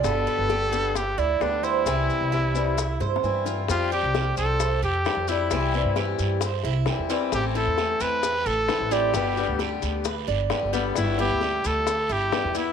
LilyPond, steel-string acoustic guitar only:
\new Staff \with { instrumentName = "Steel-string acoustic guitar" } { \time 4/4 \key c \major \tempo 4 = 132 <b, d g b g'>4 <d g b g'>8 <d g b g'>8 r4 <d g b g'>4 | <c e g c' e'>4 <e g c' e'>8 <e g c' e'>8 r4 <e g c' e'>4 | <f g c' g'>8 <g c' g'>8 <f g c' g'>4 r4 <f g c' g'>8 <g c' g'>8 | <c e g c' e'>8 <e g c' e'>8 <e g c' e'>4 r4 <e g c' e'>8 <e g c' e'>8 |
<e a c' e'>8 <a c' e'>8 <e a c' e'>4 r4 <e a c' e'>8 <a c' e'>8 | <b, d g b g'>8 <d g b g'>8 <d g b g'>4 r4 <d g b g'>8 <d g b g'>8 | <g b e'>8 <b e'>8 <g b e'>4 r4 <g b e'>8 <b e'>8 | }